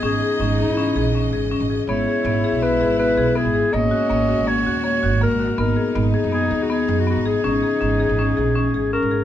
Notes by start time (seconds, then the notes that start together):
Already playing: D#5
0.02 G#1 C#3 E3 C#4 D#4 G#4
0.21 G#4
0.39 G#1 C#4
0.59 E4 G#4
0.68 G#1
0.77 C#4
0.95 A#1 G#4
1.15 C#4
1.33 G#1 G#4
1.51 C#4
1.60 G#1
1.70 G#4
1.87 G#1 B2 G#3 B3 E4 C#5
2.08 G#4
2.25 G#1 B3
2.44 G#4
2.52 B1
2.62 B3 B4
2.81 G#1 G#4
2.99 B3 B4
3.17 B1 G#4
3.36 B3 G#4
3.45 G#1
3.54 G#4
3.72 G#1 A#2 G#3 A#3 C#4 F#4 D#5
3.91 F#4
4.09 G#1 A#3
4.28 F#4
4.39 G#1
4.47 A#3 C#5
4.66 D#2 F#4
4.84 A#3 C#5
5.03 G#1 F#4
5.21 A#3 A#4
5.31 G#1
5.39 F#4
5.58 G#1 B2 B3 D#4 A#4
5.76 G#4
5.95 G#1 B3
6.14 G#4
6.24 F#2
6.32 B3 G#4
6.51 D#2 G#4
6.63 F#4
6.70 B3 G#4
6.88 F#2 G#4
7.00 F#4
7.07 B3 F#4
7.16 G#1
7.26 G#4
7.44 G#1 C#3 E3 C#4 D#4
7.62 G#4
7.81 G#1 C#4
8.00 G#4
8.09 G#1
8.19 C#4
8.37 A#1 G#4
8.55 C#4
8.74 G#1 G#4
8.93 C#4 A#4
9.02 G#1
9.11 G#4